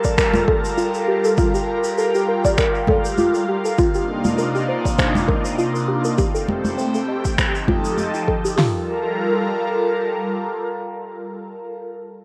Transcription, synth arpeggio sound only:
0, 0, Header, 1, 2, 480
1, 0, Start_track
1, 0, Key_signature, -2, "minor"
1, 0, Tempo, 600000
1, 1104, Time_signature, 4, 2, 24, 8
1, 9796, End_track
2, 0, Start_track
2, 0, Title_t, "Synth arpeggio sound"
2, 0, Program_c, 0, 84
2, 36, Note_on_c, 0, 74, 75
2, 94, Note_off_c, 0, 74, 0
2, 142, Note_on_c, 0, 70, 78
2, 263, Note_off_c, 0, 70, 0
2, 382, Note_on_c, 0, 69, 74
2, 455, Note_off_c, 0, 69, 0
2, 620, Note_on_c, 0, 65, 75
2, 742, Note_off_c, 0, 65, 0
2, 861, Note_on_c, 0, 67, 69
2, 989, Note_off_c, 0, 67, 0
2, 996, Note_on_c, 0, 69, 75
2, 1054, Note_off_c, 0, 69, 0
2, 1103, Note_on_c, 0, 65, 77
2, 1223, Note_off_c, 0, 65, 0
2, 1236, Note_on_c, 0, 67, 70
2, 1332, Note_off_c, 0, 67, 0
2, 1585, Note_on_c, 0, 69, 78
2, 1704, Note_off_c, 0, 69, 0
2, 1718, Note_on_c, 0, 67, 73
2, 1819, Note_off_c, 0, 67, 0
2, 1827, Note_on_c, 0, 70, 74
2, 1952, Note_off_c, 0, 70, 0
2, 1959, Note_on_c, 0, 74, 75
2, 2016, Note_off_c, 0, 74, 0
2, 2065, Note_on_c, 0, 70, 80
2, 2185, Note_off_c, 0, 70, 0
2, 2306, Note_on_c, 0, 69, 74
2, 2377, Note_off_c, 0, 69, 0
2, 2546, Note_on_c, 0, 65, 83
2, 2665, Note_off_c, 0, 65, 0
2, 2789, Note_on_c, 0, 67, 71
2, 2913, Note_off_c, 0, 67, 0
2, 2920, Note_on_c, 0, 69, 69
2, 2976, Note_off_c, 0, 69, 0
2, 3025, Note_on_c, 0, 65, 81
2, 3145, Note_off_c, 0, 65, 0
2, 3159, Note_on_c, 0, 67, 72
2, 3254, Note_off_c, 0, 67, 0
2, 3504, Note_on_c, 0, 70, 76
2, 3624, Note_off_c, 0, 70, 0
2, 3640, Note_on_c, 0, 67, 73
2, 3740, Note_off_c, 0, 67, 0
2, 3747, Note_on_c, 0, 72, 73
2, 3872, Note_off_c, 0, 72, 0
2, 3880, Note_on_c, 0, 74, 73
2, 3936, Note_off_c, 0, 74, 0
2, 3986, Note_on_c, 0, 72, 79
2, 4105, Note_off_c, 0, 72, 0
2, 4222, Note_on_c, 0, 70, 77
2, 4295, Note_off_c, 0, 70, 0
2, 4465, Note_on_c, 0, 65, 78
2, 4584, Note_off_c, 0, 65, 0
2, 4704, Note_on_c, 0, 67, 72
2, 4831, Note_off_c, 0, 67, 0
2, 4836, Note_on_c, 0, 70, 74
2, 4894, Note_off_c, 0, 70, 0
2, 4942, Note_on_c, 0, 67, 78
2, 5063, Note_off_c, 0, 67, 0
2, 5075, Note_on_c, 0, 69, 63
2, 5172, Note_off_c, 0, 69, 0
2, 5422, Note_on_c, 0, 72, 73
2, 5543, Note_off_c, 0, 72, 0
2, 5558, Note_on_c, 0, 69, 72
2, 5659, Note_off_c, 0, 69, 0
2, 5665, Note_on_c, 0, 75, 69
2, 5791, Note_off_c, 0, 75, 0
2, 5800, Note_on_c, 0, 79, 75
2, 5856, Note_off_c, 0, 79, 0
2, 5908, Note_on_c, 0, 72, 75
2, 6026, Note_off_c, 0, 72, 0
2, 6148, Note_on_c, 0, 65, 91
2, 6272, Note_off_c, 0, 65, 0
2, 6385, Note_on_c, 0, 67, 77
2, 6504, Note_off_c, 0, 67, 0
2, 6623, Note_on_c, 0, 69, 96
2, 6743, Note_off_c, 0, 69, 0
2, 6758, Note_on_c, 0, 67, 96
2, 6854, Note_off_c, 0, 67, 0
2, 6863, Note_on_c, 0, 65, 86
2, 7086, Note_off_c, 0, 65, 0
2, 9796, End_track
0, 0, End_of_file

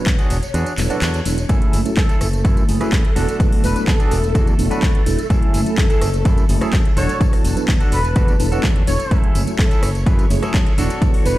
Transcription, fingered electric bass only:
0, 0, Header, 1, 3, 480
1, 0, Start_track
1, 0, Tempo, 476190
1, 1506, Time_signature, 4, 2, 24, 8
1, 11474, End_track
2, 0, Start_track
2, 0, Title_t, "Fingered electric bass"
2, 0, Program_c, 0, 33
2, 63, Note_on_c, 0, 40, 93
2, 156, Note_off_c, 0, 40, 0
2, 305, Note_on_c, 0, 28, 80
2, 397, Note_off_c, 0, 28, 0
2, 544, Note_on_c, 0, 40, 86
2, 637, Note_off_c, 0, 40, 0
2, 785, Note_on_c, 0, 28, 78
2, 877, Note_off_c, 0, 28, 0
2, 1026, Note_on_c, 0, 40, 91
2, 1206, Note_off_c, 0, 40, 0
2, 1267, Note_on_c, 0, 28, 83
2, 1446, Note_off_c, 0, 28, 0
2, 1504, Note_on_c, 0, 42, 98
2, 1597, Note_off_c, 0, 42, 0
2, 1746, Note_on_c, 0, 30, 79
2, 1838, Note_off_c, 0, 30, 0
2, 1986, Note_on_c, 0, 42, 95
2, 2078, Note_off_c, 0, 42, 0
2, 2230, Note_on_c, 0, 30, 79
2, 2466, Note_on_c, 0, 42, 89
2, 2481, Note_off_c, 0, 30, 0
2, 2646, Note_off_c, 0, 42, 0
2, 2707, Note_on_c, 0, 30, 76
2, 2799, Note_off_c, 0, 30, 0
2, 2945, Note_on_c, 0, 42, 87
2, 3037, Note_off_c, 0, 42, 0
2, 3186, Note_on_c, 0, 28, 82
2, 3278, Note_off_c, 0, 28, 0
2, 3425, Note_on_c, 0, 40, 95
2, 3517, Note_off_c, 0, 40, 0
2, 3667, Note_on_c, 0, 28, 78
2, 3759, Note_off_c, 0, 28, 0
2, 3904, Note_on_c, 0, 40, 92
2, 3997, Note_off_c, 0, 40, 0
2, 4147, Note_on_c, 0, 28, 83
2, 4385, Note_on_c, 0, 40, 86
2, 4400, Note_off_c, 0, 28, 0
2, 4565, Note_off_c, 0, 40, 0
2, 4624, Note_on_c, 0, 28, 79
2, 4717, Note_off_c, 0, 28, 0
2, 4863, Note_on_c, 0, 40, 82
2, 4956, Note_off_c, 0, 40, 0
2, 5105, Note_on_c, 0, 28, 83
2, 5197, Note_off_c, 0, 28, 0
2, 5343, Note_on_c, 0, 42, 96
2, 5436, Note_off_c, 0, 42, 0
2, 5586, Note_on_c, 0, 30, 81
2, 5678, Note_off_c, 0, 30, 0
2, 5824, Note_on_c, 0, 42, 93
2, 5917, Note_off_c, 0, 42, 0
2, 6064, Note_on_c, 0, 30, 78
2, 6303, Note_on_c, 0, 42, 86
2, 6318, Note_off_c, 0, 30, 0
2, 6485, Note_off_c, 0, 42, 0
2, 6542, Note_on_c, 0, 30, 80
2, 6636, Note_off_c, 0, 30, 0
2, 6782, Note_on_c, 0, 42, 82
2, 6876, Note_off_c, 0, 42, 0
2, 7022, Note_on_c, 0, 28, 84
2, 7116, Note_off_c, 0, 28, 0
2, 7263, Note_on_c, 0, 40, 98
2, 7357, Note_off_c, 0, 40, 0
2, 7500, Note_on_c, 0, 28, 78
2, 7595, Note_off_c, 0, 28, 0
2, 7744, Note_on_c, 0, 40, 91
2, 7837, Note_off_c, 0, 40, 0
2, 7984, Note_on_c, 0, 28, 78
2, 8223, Note_on_c, 0, 40, 86
2, 8238, Note_off_c, 0, 28, 0
2, 8405, Note_off_c, 0, 40, 0
2, 8465, Note_on_c, 0, 28, 79
2, 8646, Note_off_c, 0, 28, 0
2, 8705, Note_on_c, 0, 40, 94
2, 8886, Note_off_c, 0, 40, 0
2, 8947, Note_on_c, 0, 28, 91
2, 9039, Note_off_c, 0, 28, 0
2, 9184, Note_on_c, 0, 42, 97
2, 9277, Note_off_c, 0, 42, 0
2, 9426, Note_on_c, 0, 30, 80
2, 9518, Note_off_c, 0, 30, 0
2, 9665, Note_on_c, 0, 42, 93
2, 9757, Note_off_c, 0, 42, 0
2, 9904, Note_on_c, 0, 30, 79
2, 10144, Note_on_c, 0, 42, 85
2, 10159, Note_off_c, 0, 30, 0
2, 10325, Note_off_c, 0, 42, 0
2, 10384, Note_on_c, 0, 30, 80
2, 10477, Note_off_c, 0, 30, 0
2, 10624, Note_on_c, 0, 42, 86
2, 10717, Note_off_c, 0, 42, 0
2, 10863, Note_on_c, 0, 28, 85
2, 10956, Note_off_c, 0, 28, 0
2, 11104, Note_on_c, 0, 40, 101
2, 11197, Note_off_c, 0, 40, 0
2, 11345, Note_on_c, 0, 28, 80
2, 11437, Note_off_c, 0, 28, 0
2, 11474, End_track
3, 0, Start_track
3, 0, Title_t, "Muted fingered electric bass strokes"
3, 910, Note_on_c, 9, 29, 41
3, 1011, Note_off_c, 9, 29, 0
3, 1872, Note_on_c, 9, 29, 43
3, 1973, Note_off_c, 9, 29, 0
3, 2832, Note_on_c, 9, 29, 42
3, 2933, Note_off_c, 9, 29, 0
3, 3792, Note_on_c, 9, 29, 42
3, 3893, Note_off_c, 9, 29, 0
3, 4750, Note_on_c, 9, 29, 43
3, 4851, Note_off_c, 9, 29, 0
3, 5709, Note_on_c, 9, 29, 42
3, 5809, Note_off_c, 9, 29, 0
3, 6667, Note_on_c, 9, 29, 41
3, 6767, Note_off_c, 9, 29, 0
3, 7625, Note_on_c, 9, 29, 44
3, 7726, Note_off_c, 9, 29, 0
3, 9549, Note_on_c, 9, 29, 42
3, 9650, Note_off_c, 9, 29, 0
3, 10510, Note_on_c, 9, 29, 41
3, 10611, Note_off_c, 9, 29, 0
3, 11474, End_track
0, 0, End_of_file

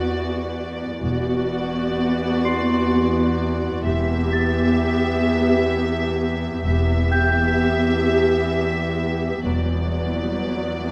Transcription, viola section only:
0, 0, Header, 1, 2, 480
1, 0, Start_track
1, 0, Key_signature, 1, "minor"
1, 0, Tempo, 938967
1, 523, Time_signature, 3, 2, 24, 8
1, 5580, End_track
2, 0, Start_track
2, 0, Title_t, "Viola section"
2, 0, Program_c, 0, 48
2, 0, Note_on_c, 0, 59, 42
2, 0, Note_on_c, 0, 66, 42
2, 502, Note_off_c, 0, 59, 0
2, 503, Note_off_c, 0, 66, 0
2, 520, Note_on_c, 0, 59, 52
2, 521, Note_on_c, 0, 66, 48
2, 1944, Note_off_c, 0, 59, 0
2, 1944, Note_off_c, 0, 66, 0
2, 1966, Note_on_c, 0, 59, 56
2, 1967, Note_on_c, 0, 67, 50
2, 3377, Note_off_c, 0, 59, 0
2, 3378, Note_off_c, 0, 67, 0
2, 3400, Note_on_c, 0, 67, 48
2, 3401, Note_on_c, 0, 59, 52
2, 4812, Note_off_c, 0, 59, 0
2, 4812, Note_off_c, 0, 67, 0
2, 4829, Note_on_c, 0, 59, 40
2, 4831, Note_on_c, 0, 54, 42
2, 5580, Note_off_c, 0, 54, 0
2, 5580, Note_off_c, 0, 59, 0
2, 5580, End_track
0, 0, End_of_file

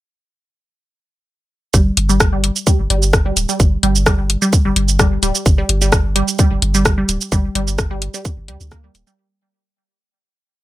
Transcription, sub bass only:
0, 0, Header, 1, 2, 480
1, 0, Start_track
1, 0, Tempo, 465116
1, 1796, Time_signature, 4, 2, 24, 8
1, 10977, End_track
2, 0, Start_track
2, 0, Title_t, "Sub bass"
2, 0, Program_c, 0, 38
2, 1794, Note_on_c, 0, 31, 101
2, 1974, Note_off_c, 0, 31, 0
2, 2036, Note_on_c, 0, 31, 95
2, 2588, Note_off_c, 0, 31, 0
2, 2882, Note_on_c, 0, 31, 78
2, 2965, Note_off_c, 0, 31, 0
2, 2995, Note_on_c, 0, 31, 98
2, 3427, Note_off_c, 0, 31, 0
2, 3474, Note_on_c, 0, 26, 103
2, 3568, Note_off_c, 0, 26, 0
2, 3714, Note_on_c, 0, 31, 103
2, 3894, Note_off_c, 0, 31, 0
2, 3954, Note_on_c, 0, 31, 97
2, 4507, Note_off_c, 0, 31, 0
2, 4801, Note_on_c, 0, 31, 76
2, 4885, Note_off_c, 0, 31, 0
2, 4914, Note_on_c, 0, 31, 96
2, 5346, Note_off_c, 0, 31, 0
2, 5394, Note_on_c, 0, 26, 101
2, 5488, Note_off_c, 0, 26, 0
2, 5634, Note_on_c, 0, 31, 98
2, 5814, Note_off_c, 0, 31, 0
2, 5875, Note_on_c, 0, 31, 99
2, 6428, Note_off_c, 0, 31, 0
2, 6722, Note_on_c, 0, 31, 82
2, 6805, Note_off_c, 0, 31, 0
2, 6835, Note_on_c, 0, 31, 96
2, 7267, Note_off_c, 0, 31, 0
2, 7316, Note_on_c, 0, 26, 106
2, 7409, Note_off_c, 0, 26, 0
2, 7555, Note_on_c, 0, 31, 101
2, 7735, Note_off_c, 0, 31, 0
2, 7796, Note_on_c, 0, 31, 98
2, 8348, Note_off_c, 0, 31, 0
2, 8642, Note_on_c, 0, 31, 79
2, 8755, Note_on_c, 0, 38, 81
2, 8771, Note_off_c, 0, 31, 0
2, 8848, Note_off_c, 0, 38, 0
2, 8882, Note_on_c, 0, 38, 111
2, 9187, Note_off_c, 0, 38, 0
2, 9236, Note_on_c, 0, 26, 102
2, 9328, Note_off_c, 0, 26, 0
2, 10977, End_track
0, 0, End_of_file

